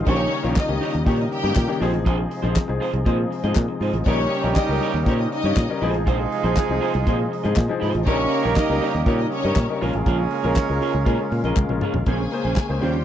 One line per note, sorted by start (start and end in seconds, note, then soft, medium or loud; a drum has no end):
0.00 4.02 D#4 medium
0.06 0.26 A#1 loud
0.06 1.80 C#3 medium
0.06 0.37 D#3 medium
0.06 1.80 G3 medium
0.06 0.37 A#3 medium
0.06 1.80 A#3 medium
0.06 0.54 C#4 loud
0.06 0.37 C#4 medium
0.06 0.27 D#4 loud
0.06 0.19 G4 loud
0.06 0.38 G4 medium
0.06 0.54 C#5 loud
0.06 0.18 C#5 loud
0.06 kick loud
0.06 closed hi-hat medium
0.19 muted clean electric guitar stroke soft
0.32 muted clean electric guitar stroke soft
0.32 open hi-hat medium
0.43 0.54 A#1 medium
0.43 0.64 D#3 medium
0.43 0.64 A#3 medium
0.43 0.64 C#4 medium
0.43 0.56 D#4 medium
0.43 0.64 F4 medium
0.43 0.56 G4 medium
0.43 0.56 C#5 medium
0.43 closed hi-hat soft
0.56 1.04 D#4 medium
0.56 1.04 D#5 loud
0.56 muted clean electric guitar stroke soft
0.56 kick loud
0.56 snare loud
0.56 clap loud
0.56 clap medium
0.56 closed hi-hat medium
0.68 0.78 C#2 medium
0.68 0.99 D#3 medium
0.68 0.99 A#3 medium
0.68 0.99 C#4 medium
0.68 0.99 G4 medium
0.68 muted clean electric guitar stroke soft
0.81 0.96 D#4 medium
0.81 0.94 G4 medium
0.81 0.93 C#5 medium
0.81 open hi-hat medium
0.94 1.04 D#2 medium
0.94 muted clean electric guitar stroke soft
0.94 closed hi-hat soft
1.06 1.25 A#2 loud
1.06 1.36 D#3 medium
1.06 1.36 A#3 medium
1.06 1.16 C#4 medium
1.06 1.37 C#4 medium
1.06 1.21 D#4 medium
1.06 1.18 G4 medium
1.06 1.37 G4 medium
1.06 1.17 C#5 medium
1.06 1.17 C#5 loud
1.06 kick loud
1.06 closed hi-hat medium
1.18 1.29 D#4 medium
1.18 1.29 D#5 medium
1.18 muted clean electric guitar stroke medium
1.31 1.79 G4 loud
1.31 1.78 G5 loud
1.31 muted clean electric guitar stroke soft
1.31 open hi-hat medium
1.43 1.53 G2 medium
1.43 1.64 D#3 medium
1.43 1.64 A#3 medium
1.43 1.64 C#4 medium
1.43 1.56 D#4 soft
1.43 1.64 G4 loud
1.43 1.56 G4 medium
1.43 1.55 D#5 soft
1.43 closed hi-hat soft
1.55 1.66 A#2 loud
1.55 kick loud
1.55 snare loud
1.55 clap loud
1.55 clap medium
1.55 closed hi-hat medium
1.68 1.81 D#3 medium
1.68 1.81 A#3 medium
1.68 1.82 C#4 medium
1.68 1.82 G4 loud
1.68 muted clean electric guitar stroke medium
1.80 1.94 A#1 medium
1.80 4.04 C3 medium
1.80 2.31 F3 loud
1.80 4.04 F3 medium
1.80 4.05 G#3 medium
1.80 2.31 C4 medium
1.80 2.32 D#4 medium
1.80 1.95 F4 medium
1.80 1.93 G#4 medium
1.80 2.32 G#4 loud
1.80 1.92 C5 medium
1.80 open hi-hat medium
1.93 2.06 A1 medium
1.93 muted clean electric guitar stroke medium
1.93 closed hi-hat medium
2.05 2.25 A#1 loud
2.05 2.20 F4 loud
2.05 2.18 G#4 loud
2.05 2.17 C5 loud
2.05 kick loud
2.05 closed hi-hat medium
2.18 muted clean electric guitar stroke soft
2.30 muted clean electric guitar stroke soft
2.30 open hi-hat medium
2.42 2.53 A#1 loud
2.42 2.63 F3 medium
2.42 2.64 C4 medium
2.42 2.64 D#4 medium
2.42 2.54 F4 medium
2.42 2.55 G#4 medium
2.42 2.64 G#4 loud
2.42 2.55 C5 medium
2.42 closed hi-hat soft
2.55 muted clean electric guitar stroke soft
2.55 kick loud
2.55 snare loud
2.55 clap loud
2.55 clap medium
2.55 closed hi-hat medium
2.68 2.78 C2 medium
2.68 2.98 F3 medium
2.68 2.99 C4 medium
2.68 2.99 D#4 medium
2.68 2.99 G#4 medium
2.68 muted clean electric guitar stroke medium
2.80 2.95 F4 medium
2.80 2.93 G#4 medium
2.80 2.92 C5 medium
2.80 open hi-hat medium
2.93 3.03 C2 medium
2.93 muted clean electric guitar stroke soft
2.93 closed hi-hat soft
3.05 3.25 A#2 loud
3.05 3.36 F3 medium
3.05 3.36 C4 medium
3.05 3.36 D#4 medium
3.05 3.20 F4 medium
3.05 3.18 G#4 medium
3.05 3.37 G#4 medium
3.05 3.17 C5 medium
3.05 kick loud
3.05 closed hi-hat medium
3.18 muted clean electric guitar stroke soft
3.31 muted clean electric guitar stroke soft
3.31 open hi-hat medium
3.43 3.53 G#2 loud
3.43 3.64 F3 medium
3.43 3.56 C4 medium
3.43 3.57 D#4 medium
3.43 3.56 F4 soft
3.43 3.56 G#4 medium
3.43 3.55 D#5 medium
3.43 closed hi-hat medium
3.55 3.66 A#2 loud
3.55 3.81 C4 medium
3.55 3.81 G#4 medium
3.55 kick loud
3.55 snare loud
3.55 clap loud
3.55 clap medium
3.55 closed hi-hat medium
3.69 muted clean electric guitar stroke medium
3.81 3.90 G#2 medium
3.81 4.05 D#4 medium
3.81 3.96 F4 medium
3.81 3.94 G#4 medium
3.81 4.29 C5 medium
3.81 3.93 C5 medium
3.81 open hi-hat medium
3.93 4.03 A1 medium
3.93 muted clean electric guitar stroke medium
3.93 closed hi-hat medium
4.06 4.25 A#1 loud
4.06 5.80 C#3 medium
4.06 5.79 G3 medium
4.06 4.36 G3 medium
4.06 5.54 G3 medium
4.06 5.79 A#3 medium
4.06 4.53 C#4 loud
4.06 4.37 C#4 medium
4.06 5.54 C#4 medium
4.06 9.77 D#4 medium
4.06 5.54 D#4 medium
4.06 4.21 D#4 medium
4.06 4.37 D#4 medium
4.06 5.54 G4 loud
4.06 4.19 G4 loud
4.06 4.37 A#4 medium
4.06 4.53 C#5 loud
4.06 4.18 C#5 medium
4.06 kick loud
4.06 closed hi-hat medium
4.19 muted clean electric guitar stroke medium
4.30 muted clean electric guitar stroke soft
4.30 open hi-hat medium
4.43 4.53 A#1 medium
4.43 4.64 G3 medium
4.43 4.64 C#4 medium
4.43 4.64 D#4 medium
4.43 4.56 D#4 medium
4.43 4.56 G4 medium
4.43 4.65 A#4 medium
4.43 4.55 C#5 medium
4.43 closed hi-hat soft
4.56 5.04 D#4 medium
4.56 5.04 D#5 medium
4.56 muted clean electric guitar stroke medium
4.56 kick loud
4.56 snare loud
4.56 clap loud
4.56 clap medium
4.56 closed hi-hat medium
4.69 4.78 C#2 medium
4.69 4.99 G3 medium
4.69 4.99 C#4 medium
4.69 5.00 D#4 medium
4.69 5.00 A#4 loud
4.69 muted clean electric guitar stroke soft
4.81 4.96 D#4 medium
4.81 4.95 G4 medium
4.81 4.93 C#5 loud
4.81 open hi-hat medium
4.94 5.03 D#2 medium
4.94 muted clean electric guitar stroke soft
4.94 closed hi-hat medium
5.06 5.25 A#2 loud
5.06 5.37 G3 medium
5.06 5.16 C#4 medium
5.06 5.37 C#4 medium
5.06 5.21 D#4 medium
5.06 5.37 D#4 medium
5.06 5.19 G4 medium
5.06 5.37 C5 loud
5.06 5.16 C#5 medium
5.06 5.19 C#5 medium
5.06 kick loud
5.06 closed hi-hat medium
5.19 5.29 D#4 medium
5.19 5.29 D#5 medium
5.19 muted clean electric guitar stroke medium
5.32 5.79 D#4 loud
5.32 5.79 D#5 loud
5.32 muted clean electric guitar stroke soft
5.32 open hi-hat medium
5.43 5.53 G2 medium
5.43 5.64 G3 medium
5.43 5.64 C#4 medium
5.43 5.64 D#4 medium
5.43 5.55 D#4 soft
5.43 5.56 G4 medium
5.43 5.65 C#5 medium
5.43 5.56 D#5 medium
5.43 closed hi-hat soft
5.56 5.66 A#2 loud
5.56 muted clean electric guitar stroke soft
5.56 kick loud
5.56 snare loud
5.56 clap loud
5.56 clap medium
5.56 closed hi-hat medium
5.69 5.82 G3 medium
5.69 5.82 C#4 medium
5.69 5.81 D#4 medium
5.69 5.82 A#4 loud
5.69 muted clean electric guitar stroke medium
5.81 5.94 A#1 medium
5.81 8.04 C3 medium
5.81 8.04 F3 medium
5.81 6.32 F3 loud
5.81 7.78 G#3 medium
5.81 8.04 G#3 medium
5.81 6.32 C4 medium
5.81 7.78 D#4 medium
5.81 6.32 D#4 medium
5.81 6.01 F4 medium
5.81 7.77 F4 medium
5.81 7.78 G#4 loud
5.81 5.94 G#4 medium
5.81 6.33 G#4 loud
5.81 5.93 C5 medium
5.81 open hi-hat medium
5.94 6.07 A1 medium
5.94 muted clean electric guitar stroke medium
5.94 closed hi-hat medium
6.06 6.26 A#1 loud
6.06 6.21 F4 medium
6.06 6.19 G#4 loud
6.06 6.18 C5 loud
6.06 kick loud
6.06 closed hi-hat medium
6.19 muted clean electric guitar stroke soft
6.31 muted clean electric guitar stroke soft
6.31 open hi-hat medium
6.44 6.53 A#1 loud
6.44 6.64 F3 medium
6.44 6.64 C4 medium
6.44 6.65 D#4 medium
6.44 6.55 F4 soft
6.44 6.56 G#4 medium
6.44 6.65 G#4 loud
6.44 6.55 C5 medium
6.44 closed hi-hat soft
6.56 muted clean electric guitar stroke soft
6.56 kick loud
6.56 snare loud
6.56 clap loud
6.56 clap medium
6.56 closed hi-hat medium
6.68 6.79 C2 medium
6.68 6.99 F3 medium
6.68 7.00 C4 medium
6.68 7.00 D#4 medium
6.68 7.00 G#4 medium
6.68 muted clean electric guitar stroke soft
6.81 6.96 F4 medium
6.81 6.94 G#4 medium
6.81 6.93 C5 medium
6.81 open hi-hat medium
6.94 7.04 C2 loud
6.94 muted clean electric guitar stroke medium
6.94 closed hi-hat soft
7.06 7.26 A#2 loud
7.06 7.37 F3 medium
7.06 7.37 C4 medium
7.06 7.37 D#4 medium
7.06 7.21 F4 medium
7.06 7.19 G#4 medium
7.06 7.38 G#4 loud
7.06 7.18 C5 medium
7.06 kick loud
7.06 closed hi-hat medium
7.19 muted clean electric guitar stroke soft
7.31 muted clean electric guitar stroke soft
7.31 open hi-hat medium
7.44 7.54 G#2 loud
7.44 7.64 F3 medium
7.44 7.64 C4 medium
7.44 7.65 D#4 medium
7.44 7.56 F4 medium
7.44 7.56 G#4 medium
7.44 7.65 G#4 loud
7.44 7.55 D#5 medium
7.44 closed hi-hat medium
7.56 7.66 A#2 loud
7.56 kick loud
7.56 snare loud
7.56 clap loud
7.56 clap medium
7.56 closed hi-hat medium
7.68 7.99 F3 loud
7.68 8.00 C4 medium
7.68 8.00 D#4 medium
7.68 8.00 G#4 loud
7.68 muted clean electric guitar stroke soft
7.80 7.91 G#2 medium
7.80 8.00 F4 medium
7.80 7.94 G#4 medium
7.80 7.92 C5 medium
7.80 open hi-hat medium
7.94 8.07 A1 loud
7.94 muted clean electric guitar stroke soft
7.94 closed hi-hat medium
8.06 8.25 A#1 loud
8.06 12.03 C#3 medium
8.06 8.36 G3 medium
8.06 9.80 G3 medium
8.06 12.03 A#3 medium
8.06 9.54 A#3 loud
8.06 8.53 C#4 loud
8.06 8.37 C#4 medium
8.06 8.21 D#4 medium
8.06 9.54 D#4 medium
8.06 8.37 D#4 medium
8.06 8.18 G4 loud
8.06 9.54 G4 loud
8.06 9.54 A#4 loud
8.06 8.37 A#4 loud
8.06 8.53 C#5 loud
8.06 8.17 C#5 loud
8.06 kick loud
8.06 closed hi-hat medium
8.18 muted clean electric guitar stroke soft
8.31 muted clean electric guitar stroke soft
8.31 open hi-hat medium
8.43 8.54 A#1 medium
8.43 8.64 G3 medium
8.43 8.64 C#4 medium
8.43 8.55 D#4 medium
8.43 8.65 D#4 medium
8.43 8.55 G4 medium
8.43 8.65 A#4 loud
8.43 8.55 C#5 medium
8.43 closed hi-hat soft
8.56 9.04 D#4 medium
8.56 9.04 D#5 medium
8.56 muted clean electric guitar stroke soft
8.56 kick loud
8.56 snare loud
8.56 clap loud
8.56 clap medium
8.56 closed hi-hat medium
8.69 8.79 C#2 medium
8.69 8.99 G3 medium
8.69 8.99 C#4 medium
8.69 9.00 D#4 medium
8.69 9.00 A#4 loud
8.69 muted clean electric guitar stroke soft
8.81 8.96 D#4 medium
8.81 8.94 G4 medium
8.81 8.93 C#5 medium
8.81 open hi-hat medium
8.93 9.04 D#2 medium
8.93 muted clean electric guitar stroke medium
8.93 closed hi-hat soft
9.06 9.25 A#2 loud
9.06 9.36 G3 medium
9.06 9.17 C#4 medium
9.06 9.37 C#4 medium
9.06 9.21 D#4 medium
9.06 9.37 D#4 medium
9.06 9.20 G4 medium
9.06 9.37 A#4 medium
9.06 9.17 C#5 medium
9.06 9.18 C#5 medium
9.06 kick loud
9.06 closed hi-hat medium
9.19 9.29 D#4 medium
9.19 9.29 D#5 medium
9.19 muted clean electric guitar stroke soft
9.31 9.78 C#4 loud
9.31 9.78 C#5 loud
9.31 muted clean electric guitar stroke soft
9.31 open hi-hat medium
9.43 9.54 G2 loud
9.43 9.64 G3 medium
9.43 9.64 C#4 medium
9.43 9.64 D#4 medium
9.43 9.56 D#4 soft
9.43 9.56 G4 medium
9.43 9.65 A#4 loud
9.43 9.55 D#5 medium
9.43 closed hi-hat medium
9.56 9.66 A#2 loud
9.56 kick loud
9.56 snare loud
9.56 clap medium
9.56 clap loud
9.56 closed hi-hat medium
9.69 9.82 G3 medium
9.69 9.80 C#4 medium
9.69 9.82 D#4 medium
9.69 9.81 A#4 medium
9.69 muted clean electric guitar stroke medium
9.81 9.91 A#1 medium
9.81 10.31 G#3 medium
9.81 12.04 G#3 medium
9.81 10.31 C#4 medium
9.81 11.78 C#4 medium
9.81 12.04 F4 medium
9.81 9.96 F4 medium
9.81 10.32 F4 medium
9.81 11.78 G#4 medium
9.81 9.94 G#4 medium
9.81 11.78 A#4 medium
9.81 10.32 A#4 loud
9.81 11.78 C#5 medium
9.81 9.93 C#5 medium
9.81 open hi-hat medium
9.93 10.04 A1 medium
9.93 muted clean electric guitar stroke soft
9.93 closed hi-hat medium
10.06 10.25 A#1 loud
10.06 10.21 F4 loud
10.06 10.19 G#4 medium
10.06 10.18 C#5 loud
10.06 kick loud
10.06 closed hi-hat medium
10.19 muted clean electric guitar stroke soft
10.31 muted clean electric guitar stroke soft
10.31 open hi-hat medium
10.43 10.54 A#1 medium
10.43 10.64 G#3 medium
10.43 10.64 C#4 medium
10.43 10.64 F4 medium
10.43 10.55 F4 medium
10.43 10.55 G#4 medium
10.43 10.65 A#4 loud
10.43 10.55 C#5 medium
10.43 closed hi-hat soft
10.56 muted clean electric guitar stroke soft
10.56 kick loud
10.56 snare loud
10.56 clap loud
10.56 clap medium
10.56 closed hi-hat medium
10.68 10.79 C#2 medium
10.68 10.99 G#3 medium
10.68 10.99 C#4 medium
10.68 11.00 F4 medium
10.68 10.99 A#4 medium
10.68 muted clean electric guitar stroke medium
10.81 10.96 F4 medium
10.81 10.94 G#4 medium
10.81 10.92 C#5 medium
10.81 open hi-hat medium
10.93 11.04 C#2 loud
10.93 muted clean electric guitar stroke soft
10.93 closed hi-hat soft
11.05 11.16 A#2 loud
11.05 11.36 G#3 medium
11.05 11.36 C#4 medium
11.05 11.21 F4 medium
11.05 11.37 F4 medium
11.05 11.19 G#4 medium
11.05 11.37 A#4 medium
11.05 11.18 C#5 medium
11.05 kick loud
11.05 closed hi-hat medium
11.19 muted clean electric guitar stroke soft
11.31 11.41 A#2 loud
11.31 muted clean electric guitar stroke soft
11.31 open hi-hat medium
11.43 11.53 A#1 medium
11.43 11.64 G#3 medium
11.43 11.64 C#4 medium
11.43 11.64 F4 medium
11.43 11.57 F4 soft
11.43 11.56 G#4 soft
11.43 11.64 A#4 loud
11.43 11.56 D#5 medium
11.43 closed hi-hat medium
11.56 11.66 C#2 loud
11.56 kick loud
11.56 clap loud
11.56 high tom medium
11.69 11.79 A#1 medium
11.69 11.99 G#3 medium
11.69 12.00 C#4 medium
11.69 12.00 F4 medium
11.69 12.00 A#4 medium
11.69 muted clean electric guitar stroke soft
11.69 mid tom medium
11.81 11.96 F4 medium
11.81 11.94 G#4 medium
11.81 11.93 C#5 medium
11.81 mid tom loud
11.94 12.04 A#1 medium
11.94 muted clean electric guitar stroke soft
11.94 floor tom loud
12.06 12.26 A#1 medium
12.06 12.81 C#3 medium
12.06 12.82 G#3 medium
12.06 12.27 A#3 medium
12.06 12.82 A#3 medium
12.06 12.21 C#4 medium
12.06 12.27 C#4 medium
12.06 12.82 C#4 medium
12.06 12.80 G#4 medium
12.06 12.20 G#4 loud
12.06 12.27 G#4 medium
12.06 12.27 C5 medium
12.06 12.19 C5 loud
12.06 12.80 G#5 medium
12.06 kick loud
12.06 closed hi-hat medium
12.20 muted clean electric guitar stroke soft
12.31 12.62 A#3 medium
12.31 12.62 C#4 medium
12.31 12.63 G#4 medium
12.31 12.63 C5 loud
12.31 muted clean electric guitar stroke soft
12.31 open hi-hat medium
12.45 12.54 A#1 medium
12.45 12.56 C#4 soft
12.45 12.56 G#4 medium
12.45 12.56 C5 medium
12.45 closed hi-hat soft
12.56 muted clean electric guitar stroke soft
12.56 kick loud
12.56 snare loud
12.56 clap loud
12.56 clap medium
12.56 closed hi-hat medium
12.69 12.79 C#2 medium
12.69 12.82 A#3 medium
12.69 12.80 C#4 medium
12.69 12.82 G#4 medium
12.69 12.80 C5 medium
12.69 muted clean electric guitar stroke medium
12.80 13.05 D#2 medium
12.80 13.05 C#3 medium
12.80 13.05 G3 medium
12.80 13.05 C#4 medium
12.80 12.96 C#4 medium
12.80 13.05 F4 medium
12.80 13.05 G4 medium
12.80 12.95 G4 medium
12.80 13.05 C5 medium
12.80 12.94 C5 medium
12.80 13.05 G5 medium
12.80 open hi-hat medium
12.94 muted clean electric guitar stroke soft
12.94 closed hi-hat soft